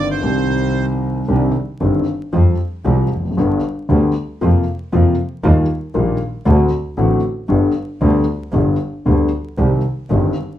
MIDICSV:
0, 0, Header, 1, 4, 480
1, 0, Start_track
1, 0, Key_signature, -3, "minor"
1, 0, Tempo, 519481
1, 1193, Time_signature, 4, 2, 24, 8
1, 9783, End_track
2, 0, Start_track
2, 0, Title_t, "Bandoneon"
2, 0, Program_c, 0, 23
2, 101, Note_on_c, 0, 72, 58
2, 793, Note_off_c, 0, 72, 0
2, 9783, End_track
3, 0, Start_track
3, 0, Title_t, "Grand piano"
3, 0, Program_c, 1, 0
3, 0, Note_on_c, 1, 31, 74
3, 0, Note_on_c, 1, 43, 66
3, 0, Note_on_c, 1, 51, 63
3, 0, Note_on_c, 1, 55, 56
3, 0, Note_on_c, 1, 60, 54
3, 0, Note_on_c, 1, 67, 66
3, 169, Note_off_c, 1, 51, 0
3, 176, Note_off_c, 1, 55, 0
3, 178, Note_off_c, 1, 31, 0
3, 179, Note_off_c, 1, 43, 0
3, 182, Note_off_c, 1, 60, 0
3, 189, Note_off_c, 1, 67, 0
3, 192, Note_on_c, 1, 51, 62
3, 204, Note_on_c, 1, 55, 54
3, 210, Note_on_c, 1, 36, 70
3, 211, Note_on_c, 1, 48, 74
3, 213, Note_on_c, 1, 60, 52
3, 226, Note_on_c, 1, 67, 64
3, 1132, Note_off_c, 1, 51, 0
3, 1137, Note_off_c, 1, 55, 0
3, 1141, Note_off_c, 1, 36, 0
3, 1141, Note_off_c, 1, 48, 0
3, 1142, Note_off_c, 1, 60, 0
3, 1148, Note_off_c, 1, 67, 0
3, 1183, Note_on_c, 1, 60, 64
3, 1184, Note_on_c, 1, 51, 66
3, 1185, Note_on_c, 1, 36, 78
3, 1185, Note_on_c, 1, 48, 77
3, 1185, Note_on_c, 1, 62, 56
3, 1189, Note_on_c, 1, 67, 76
3, 1392, Note_off_c, 1, 48, 0
3, 1392, Note_off_c, 1, 51, 0
3, 1392, Note_off_c, 1, 60, 0
3, 1393, Note_off_c, 1, 36, 0
3, 1393, Note_off_c, 1, 62, 0
3, 1395, Note_off_c, 1, 67, 0
3, 1667, Note_on_c, 1, 51, 66
3, 1668, Note_on_c, 1, 60, 65
3, 1669, Note_on_c, 1, 43, 74
3, 1671, Note_on_c, 1, 31, 76
3, 1671, Note_on_c, 1, 67, 73
3, 1674, Note_on_c, 1, 62, 56
3, 1875, Note_off_c, 1, 51, 0
3, 1875, Note_off_c, 1, 60, 0
3, 1876, Note_off_c, 1, 43, 0
3, 1877, Note_off_c, 1, 31, 0
3, 1877, Note_off_c, 1, 67, 0
3, 1878, Note_off_c, 1, 62, 0
3, 2147, Note_on_c, 1, 55, 55
3, 2149, Note_on_c, 1, 53, 73
3, 2150, Note_on_c, 1, 60, 58
3, 2152, Note_on_c, 1, 41, 78
3, 2156, Note_on_c, 1, 67, 67
3, 2354, Note_off_c, 1, 55, 0
3, 2355, Note_off_c, 1, 53, 0
3, 2355, Note_off_c, 1, 60, 0
3, 2356, Note_off_c, 1, 41, 0
3, 2358, Note_off_c, 1, 67, 0
3, 2633, Note_on_c, 1, 53, 68
3, 2635, Note_on_c, 1, 55, 65
3, 2636, Note_on_c, 1, 36, 77
3, 2636, Note_on_c, 1, 48, 75
3, 2637, Note_on_c, 1, 60, 58
3, 2639, Note_on_c, 1, 67, 76
3, 2837, Note_off_c, 1, 53, 0
3, 2838, Note_off_c, 1, 36, 0
3, 2838, Note_off_c, 1, 48, 0
3, 2838, Note_off_c, 1, 55, 0
3, 2839, Note_off_c, 1, 60, 0
3, 2840, Note_off_c, 1, 67, 0
3, 2934, Note_on_c, 1, 40, 43
3, 2988, Note_on_c, 1, 41, 52
3, 2996, Note_off_c, 1, 40, 0
3, 3052, Note_off_c, 1, 41, 0
3, 3056, Note_on_c, 1, 42, 61
3, 3114, Note_on_c, 1, 50, 70
3, 3114, Note_on_c, 1, 55, 61
3, 3116, Note_off_c, 1, 42, 0
3, 3116, Note_on_c, 1, 31, 83
3, 3118, Note_on_c, 1, 43, 80
3, 3119, Note_on_c, 1, 59, 65
3, 3120, Note_on_c, 1, 67, 73
3, 3317, Note_off_c, 1, 50, 0
3, 3317, Note_off_c, 1, 55, 0
3, 3318, Note_off_c, 1, 31, 0
3, 3319, Note_off_c, 1, 43, 0
3, 3319, Note_off_c, 1, 59, 0
3, 3320, Note_off_c, 1, 67, 0
3, 3592, Note_on_c, 1, 50, 82
3, 3595, Note_on_c, 1, 38, 81
3, 3596, Note_on_c, 1, 55, 68
3, 3601, Note_on_c, 1, 59, 63
3, 3601, Note_on_c, 1, 67, 75
3, 3797, Note_off_c, 1, 38, 0
3, 3798, Note_off_c, 1, 55, 0
3, 3799, Note_off_c, 1, 50, 0
3, 3800, Note_off_c, 1, 59, 0
3, 3800, Note_off_c, 1, 67, 0
3, 4076, Note_on_c, 1, 53, 73
3, 4079, Note_on_c, 1, 48, 65
3, 4079, Note_on_c, 1, 58, 64
3, 4081, Note_on_c, 1, 41, 81
3, 4083, Note_on_c, 1, 65, 74
3, 4277, Note_off_c, 1, 48, 0
3, 4277, Note_off_c, 1, 53, 0
3, 4277, Note_off_c, 1, 58, 0
3, 4278, Note_off_c, 1, 41, 0
3, 4279, Note_off_c, 1, 65, 0
3, 4552, Note_on_c, 1, 41, 81
3, 4552, Note_on_c, 1, 48, 70
3, 4554, Note_on_c, 1, 53, 81
3, 4555, Note_on_c, 1, 58, 61
3, 4556, Note_on_c, 1, 65, 78
3, 4750, Note_off_c, 1, 41, 0
3, 4750, Note_off_c, 1, 48, 0
3, 4751, Note_off_c, 1, 53, 0
3, 4751, Note_off_c, 1, 58, 0
3, 4751, Note_off_c, 1, 65, 0
3, 5020, Note_on_c, 1, 51, 82
3, 5022, Note_on_c, 1, 39, 83
3, 5022, Note_on_c, 1, 65, 78
3, 5024, Note_on_c, 1, 55, 67
3, 5024, Note_on_c, 1, 58, 66
3, 5221, Note_off_c, 1, 39, 0
3, 5221, Note_off_c, 1, 51, 0
3, 5221, Note_off_c, 1, 58, 0
3, 5221, Note_off_c, 1, 65, 0
3, 5222, Note_off_c, 1, 55, 0
3, 5489, Note_on_c, 1, 51, 67
3, 5492, Note_on_c, 1, 34, 80
3, 5495, Note_on_c, 1, 58, 69
3, 5496, Note_on_c, 1, 46, 84
3, 5496, Note_on_c, 1, 55, 65
3, 5497, Note_on_c, 1, 65, 76
3, 5693, Note_off_c, 1, 51, 0
3, 5694, Note_off_c, 1, 34, 0
3, 5696, Note_off_c, 1, 46, 0
3, 5696, Note_off_c, 1, 55, 0
3, 5696, Note_off_c, 1, 58, 0
3, 5697, Note_off_c, 1, 65, 0
3, 5965, Note_on_c, 1, 50, 83
3, 5965, Note_on_c, 1, 57, 66
3, 5968, Note_on_c, 1, 60, 66
3, 5970, Note_on_c, 1, 38, 83
3, 5971, Note_on_c, 1, 66, 78
3, 6168, Note_off_c, 1, 57, 0
3, 6169, Note_off_c, 1, 50, 0
3, 6169, Note_off_c, 1, 60, 0
3, 6170, Note_off_c, 1, 38, 0
3, 6171, Note_off_c, 1, 66, 0
3, 6443, Note_on_c, 1, 33, 81
3, 6443, Note_on_c, 1, 45, 87
3, 6443, Note_on_c, 1, 57, 64
3, 6444, Note_on_c, 1, 50, 64
3, 6444, Note_on_c, 1, 60, 67
3, 6448, Note_on_c, 1, 66, 77
3, 6645, Note_off_c, 1, 33, 0
3, 6645, Note_off_c, 1, 45, 0
3, 6645, Note_off_c, 1, 50, 0
3, 6645, Note_off_c, 1, 57, 0
3, 6646, Note_off_c, 1, 60, 0
3, 6647, Note_off_c, 1, 66, 0
3, 6917, Note_on_c, 1, 50, 71
3, 6919, Note_on_c, 1, 31, 76
3, 6919, Note_on_c, 1, 43, 84
3, 6922, Note_on_c, 1, 55, 62
3, 6922, Note_on_c, 1, 67, 74
3, 6923, Note_on_c, 1, 59, 66
3, 7121, Note_off_c, 1, 50, 0
3, 7123, Note_off_c, 1, 31, 0
3, 7123, Note_off_c, 1, 43, 0
3, 7124, Note_off_c, 1, 55, 0
3, 7124, Note_off_c, 1, 59, 0
3, 7124, Note_off_c, 1, 67, 0
3, 7406, Note_on_c, 1, 50, 79
3, 7406, Note_on_c, 1, 55, 66
3, 7408, Note_on_c, 1, 38, 82
3, 7408, Note_on_c, 1, 59, 63
3, 7412, Note_on_c, 1, 67, 75
3, 7607, Note_off_c, 1, 50, 0
3, 7607, Note_off_c, 1, 55, 0
3, 7608, Note_off_c, 1, 38, 0
3, 7608, Note_off_c, 1, 59, 0
3, 7610, Note_off_c, 1, 67, 0
3, 7882, Note_on_c, 1, 50, 66
3, 7885, Note_on_c, 1, 43, 80
3, 7888, Note_on_c, 1, 55, 58
3, 7888, Note_on_c, 1, 67, 70
3, 7889, Note_on_c, 1, 31, 79
3, 7889, Note_on_c, 1, 59, 59
3, 8086, Note_off_c, 1, 50, 0
3, 8088, Note_off_c, 1, 43, 0
3, 8089, Note_off_c, 1, 55, 0
3, 8090, Note_off_c, 1, 31, 0
3, 8090, Note_off_c, 1, 59, 0
3, 8090, Note_off_c, 1, 67, 0
3, 8366, Note_on_c, 1, 50, 74
3, 8369, Note_on_c, 1, 55, 60
3, 8372, Note_on_c, 1, 38, 76
3, 8372, Note_on_c, 1, 67, 74
3, 8373, Note_on_c, 1, 59, 58
3, 8573, Note_off_c, 1, 50, 0
3, 8573, Note_off_c, 1, 55, 0
3, 8575, Note_off_c, 1, 38, 0
3, 8575, Note_off_c, 1, 59, 0
3, 8575, Note_off_c, 1, 67, 0
3, 8851, Note_on_c, 1, 51, 67
3, 8852, Note_on_c, 1, 36, 73
3, 8852, Note_on_c, 1, 55, 56
3, 8856, Note_on_c, 1, 48, 71
3, 8856, Note_on_c, 1, 60, 58
3, 8856, Note_on_c, 1, 67, 77
3, 9055, Note_off_c, 1, 51, 0
3, 9056, Note_off_c, 1, 36, 0
3, 9056, Note_off_c, 1, 55, 0
3, 9057, Note_off_c, 1, 48, 0
3, 9058, Note_off_c, 1, 60, 0
3, 9058, Note_off_c, 1, 67, 0
3, 9331, Note_on_c, 1, 51, 68
3, 9334, Note_on_c, 1, 60, 60
3, 9335, Note_on_c, 1, 31, 79
3, 9335, Note_on_c, 1, 43, 76
3, 9335, Note_on_c, 1, 55, 60
3, 9338, Note_on_c, 1, 67, 76
3, 9537, Note_off_c, 1, 51, 0
3, 9538, Note_off_c, 1, 55, 0
3, 9538, Note_off_c, 1, 60, 0
3, 9539, Note_off_c, 1, 31, 0
3, 9539, Note_off_c, 1, 43, 0
3, 9540, Note_off_c, 1, 67, 0
3, 9783, End_track
4, 0, Start_track
4, 0, Title_t, "Double bass"
4, 0, Program_c, 2, 43
4, 0, Note_on_c, 2, 31, 78
4, 179, Note_off_c, 2, 31, 0
4, 214, Note_on_c, 2, 36, 87
4, 1143, Note_off_c, 2, 36, 0
4, 1191, Note_on_c, 2, 36, 83
4, 1396, Note_off_c, 2, 36, 0
4, 1670, Note_on_c, 2, 31, 75
4, 1876, Note_off_c, 2, 31, 0
4, 2152, Note_on_c, 2, 41, 83
4, 2356, Note_off_c, 2, 41, 0
4, 2633, Note_on_c, 2, 36, 82
4, 2837, Note_off_c, 2, 36, 0
4, 2879, Note_on_c, 2, 29, 55
4, 3108, Note_off_c, 2, 29, 0
4, 3114, Note_on_c, 2, 31, 78
4, 3316, Note_off_c, 2, 31, 0
4, 3600, Note_on_c, 2, 38, 79
4, 3800, Note_off_c, 2, 38, 0
4, 4079, Note_on_c, 2, 41, 82
4, 4277, Note_off_c, 2, 41, 0
4, 4551, Note_on_c, 2, 41, 83
4, 4749, Note_off_c, 2, 41, 0
4, 5023, Note_on_c, 2, 39, 86
4, 5221, Note_off_c, 2, 39, 0
4, 5496, Note_on_c, 2, 34, 80
4, 5696, Note_off_c, 2, 34, 0
4, 5967, Note_on_c, 2, 38, 92
4, 6169, Note_off_c, 2, 38, 0
4, 6444, Note_on_c, 2, 33, 77
4, 6646, Note_off_c, 2, 33, 0
4, 6916, Note_on_c, 2, 31, 79
4, 7121, Note_off_c, 2, 31, 0
4, 7402, Note_on_c, 2, 38, 83
4, 7605, Note_off_c, 2, 38, 0
4, 7879, Note_on_c, 2, 31, 84
4, 8085, Note_off_c, 2, 31, 0
4, 8373, Note_on_c, 2, 38, 70
4, 8575, Note_off_c, 2, 38, 0
4, 8849, Note_on_c, 2, 36, 82
4, 9054, Note_off_c, 2, 36, 0
4, 9334, Note_on_c, 2, 31, 86
4, 9538, Note_off_c, 2, 31, 0
4, 9783, End_track
0, 0, End_of_file